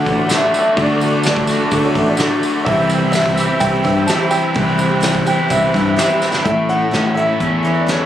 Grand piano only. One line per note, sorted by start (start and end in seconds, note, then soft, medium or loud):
0.00 0.28 F#5 loud
0.35 0.57 E5 loud
0.59 0.80 E5 loud
0.83 1.24 D5 medium
1.28 1.71 D5 medium
2.65 3.09 E5 medium
3.12 3.62 E5 medium
3.60 4.09 G5 loud
4.07 4.32 A5 medium
4.31 5.26 G5 loud
5.27 5.51 G5 loud
5.51 5.96 E5 medium
5.98 6.31 E5 medium
6.44 6.69 E5 medium
6.69 7.18 F#5 loud
7.15 7.77 E5 loud
7.81 7.87 D5 medium
7.90 8.06 C#5 medium